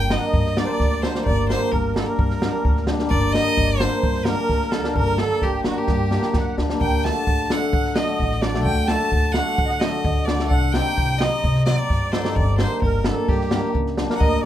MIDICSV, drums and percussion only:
0, 0, Header, 1, 2, 480
1, 0, Start_track
1, 0, Key_signature, -2, "minor"
1, 0, Tempo, 462606
1, 1304, Time_signature, 4, 2, 24, 8
1, 14995, End_track
2, 0, Start_track
2, 0, Title_t, "Drums"
2, 109, Note_on_c, 9, 38, 94
2, 212, Note_off_c, 9, 38, 0
2, 349, Note_on_c, 9, 36, 83
2, 453, Note_off_c, 9, 36, 0
2, 478, Note_on_c, 9, 38, 25
2, 582, Note_off_c, 9, 38, 0
2, 591, Note_on_c, 9, 38, 86
2, 694, Note_off_c, 9, 38, 0
2, 829, Note_on_c, 9, 36, 60
2, 833, Note_on_c, 9, 38, 29
2, 933, Note_off_c, 9, 36, 0
2, 937, Note_off_c, 9, 38, 0
2, 958, Note_on_c, 9, 38, 20
2, 1062, Note_off_c, 9, 38, 0
2, 1071, Note_on_c, 9, 38, 77
2, 1175, Note_off_c, 9, 38, 0
2, 1195, Note_on_c, 9, 38, 60
2, 1299, Note_off_c, 9, 38, 0
2, 1311, Note_on_c, 9, 36, 76
2, 1415, Note_off_c, 9, 36, 0
2, 1558, Note_on_c, 9, 38, 73
2, 1662, Note_off_c, 9, 38, 0
2, 1793, Note_on_c, 9, 36, 63
2, 1897, Note_off_c, 9, 36, 0
2, 2034, Note_on_c, 9, 38, 85
2, 2138, Note_off_c, 9, 38, 0
2, 2272, Note_on_c, 9, 36, 80
2, 2375, Note_off_c, 9, 36, 0
2, 2393, Note_on_c, 9, 38, 26
2, 2497, Note_off_c, 9, 38, 0
2, 2510, Note_on_c, 9, 38, 94
2, 2614, Note_off_c, 9, 38, 0
2, 2749, Note_on_c, 9, 36, 73
2, 2852, Note_off_c, 9, 36, 0
2, 2869, Note_on_c, 9, 38, 21
2, 2973, Note_off_c, 9, 38, 0
2, 2977, Note_on_c, 9, 38, 85
2, 3081, Note_off_c, 9, 38, 0
2, 3100, Note_on_c, 9, 38, 58
2, 3204, Note_off_c, 9, 38, 0
2, 3226, Note_on_c, 9, 36, 79
2, 3330, Note_off_c, 9, 36, 0
2, 3469, Note_on_c, 9, 38, 71
2, 3573, Note_off_c, 9, 38, 0
2, 3709, Note_on_c, 9, 36, 70
2, 3812, Note_off_c, 9, 36, 0
2, 3946, Note_on_c, 9, 38, 90
2, 4050, Note_off_c, 9, 38, 0
2, 4185, Note_on_c, 9, 36, 81
2, 4289, Note_off_c, 9, 36, 0
2, 4297, Note_on_c, 9, 38, 24
2, 4401, Note_off_c, 9, 38, 0
2, 4413, Note_on_c, 9, 38, 98
2, 4517, Note_off_c, 9, 38, 0
2, 4664, Note_on_c, 9, 36, 61
2, 4666, Note_on_c, 9, 38, 24
2, 4768, Note_off_c, 9, 36, 0
2, 4770, Note_off_c, 9, 38, 0
2, 4785, Note_on_c, 9, 38, 23
2, 4889, Note_off_c, 9, 38, 0
2, 4897, Note_on_c, 9, 38, 91
2, 5000, Note_off_c, 9, 38, 0
2, 5025, Note_on_c, 9, 38, 60
2, 5128, Note_off_c, 9, 38, 0
2, 5143, Note_on_c, 9, 36, 74
2, 5247, Note_off_c, 9, 36, 0
2, 5375, Note_on_c, 9, 38, 74
2, 5479, Note_off_c, 9, 38, 0
2, 5622, Note_on_c, 9, 36, 67
2, 5624, Note_on_c, 9, 38, 24
2, 5726, Note_off_c, 9, 36, 0
2, 5728, Note_off_c, 9, 38, 0
2, 5856, Note_on_c, 9, 38, 80
2, 5960, Note_off_c, 9, 38, 0
2, 6091, Note_on_c, 9, 38, 50
2, 6101, Note_on_c, 9, 36, 77
2, 6195, Note_off_c, 9, 38, 0
2, 6205, Note_off_c, 9, 36, 0
2, 6343, Note_on_c, 9, 38, 51
2, 6447, Note_off_c, 9, 38, 0
2, 6457, Note_on_c, 9, 38, 53
2, 6561, Note_off_c, 9, 38, 0
2, 6573, Note_on_c, 9, 38, 65
2, 6581, Note_on_c, 9, 36, 72
2, 6677, Note_off_c, 9, 38, 0
2, 6685, Note_off_c, 9, 36, 0
2, 6829, Note_on_c, 9, 38, 63
2, 6932, Note_off_c, 9, 38, 0
2, 6947, Note_on_c, 9, 38, 64
2, 7051, Note_off_c, 9, 38, 0
2, 7065, Note_on_c, 9, 36, 89
2, 7168, Note_off_c, 9, 36, 0
2, 7316, Note_on_c, 9, 38, 66
2, 7419, Note_off_c, 9, 38, 0
2, 7546, Note_on_c, 9, 36, 67
2, 7649, Note_off_c, 9, 36, 0
2, 7784, Note_on_c, 9, 38, 90
2, 7888, Note_off_c, 9, 38, 0
2, 8023, Note_on_c, 9, 36, 90
2, 8127, Note_off_c, 9, 36, 0
2, 8145, Note_on_c, 9, 38, 24
2, 8249, Note_off_c, 9, 38, 0
2, 8255, Note_on_c, 9, 38, 97
2, 8359, Note_off_c, 9, 38, 0
2, 8503, Note_on_c, 9, 36, 60
2, 8607, Note_off_c, 9, 36, 0
2, 8626, Note_on_c, 9, 38, 22
2, 8730, Note_off_c, 9, 38, 0
2, 8739, Note_on_c, 9, 38, 87
2, 8843, Note_off_c, 9, 38, 0
2, 8864, Note_on_c, 9, 38, 60
2, 8968, Note_off_c, 9, 38, 0
2, 8982, Note_on_c, 9, 36, 73
2, 9086, Note_off_c, 9, 36, 0
2, 9215, Note_on_c, 9, 38, 76
2, 9318, Note_off_c, 9, 38, 0
2, 9462, Note_on_c, 9, 36, 64
2, 9565, Note_off_c, 9, 36, 0
2, 9692, Note_on_c, 9, 38, 90
2, 9796, Note_off_c, 9, 38, 0
2, 9943, Note_on_c, 9, 36, 89
2, 10047, Note_off_c, 9, 36, 0
2, 10061, Note_on_c, 9, 38, 24
2, 10165, Note_off_c, 9, 38, 0
2, 10182, Note_on_c, 9, 38, 102
2, 10285, Note_off_c, 9, 38, 0
2, 10423, Note_on_c, 9, 36, 64
2, 10527, Note_off_c, 9, 36, 0
2, 10663, Note_on_c, 9, 38, 85
2, 10767, Note_off_c, 9, 38, 0
2, 10784, Note_on_c, 9, 38, 63
2, 10888, Note_off_c, 9, 38, 0
2, 10906, Note_on_c, 9, 36, 69
2, 11010, Note_off_c, 9, 36, 0
2, 11142, Note_on_c, 9, 38, 77
2, 11246, Note_off_c, 9, 38, 0
2, 11390, Note_on_c, 9, 36, 64
2, 11493, Note_off_c, 9, 36, 0
2, 11627, Note_on_c, 9, 38, 91
2, 11731, Note_off_c, 9, 38, 0
2, 11868, Note_on_c, 9, 36, 70
2, 11972, Note_off_c, 9, 36, 0
2, 11985, Note_on_c, 9, 38, 23
2, 12089, Note_off_c, 9, 38, 0
2, 12106, Note_on_c, 9, 38, 86
2, 12210, Note_off_c, 9, 38, 0
2, 12349, Note_on_c, 9, 36, 67
2, 12352, Note_on_c, 9, 38, 24
2, 12453, Note_off_c, 9, 36, 0
2, 12455, Note_off_c, 9, 38, 0
2, 12586, Note_on_c, 9, 38, 90
2, 12689, Note_off_c, 9, 38, 0
2, 12709, Note_on_c, 9, 38, 66
2, 12812, Note_off_c, 9, 38, 0
2, 12827, Note_on_c, 9, 36, 80
2, 12931, Note_off_c, 9, 36, 0
2, 13059, Note_on_c, 9, 38, 84
2, 13163, Note_off_c, 9, 38, 0
2, 13303, Note_on_c, 9, 36, 73
2, 13407, Note_off_c, 9, 36, 0
2, 13535, Note_on_c, 9, 38, 92
2, 13639, Note_off_c, 9, 38, 0
2, 13785, Note_on_c, 9, 36, 87
2, 13888, Note_off_c, 9, 36, 0
2, 13913, Note_on_c, 9, 38, 22
2, 14017, Note_off_c, 9, 38, 0
2, 14019, Note_on_c, 9, 38, 93
2, 14123, Note_off_c, 9, 38, 0
2, 14264, Note_on_c, 9, 36, 71
2, 14368, Note_off_c, 9, 36, 0
2, 14387, Note_on_c, 9, 38, 22
2, 14491, Note_off_c, 9, 38, 0
2, 14501, Note_on_c, 9, 38, 81
2, 14605, Note_off_c, 9, 38, 0
2, 14632, Note_on_c, 9, 38, 61
2, 14736, Note_off_c, 9, 38, 0
2, 14744, Note_on_c, 9, 36, 78
2, 14848, Note_off_c, 9, 36, 0
2, 14995, End_track
0, 0, End_of_file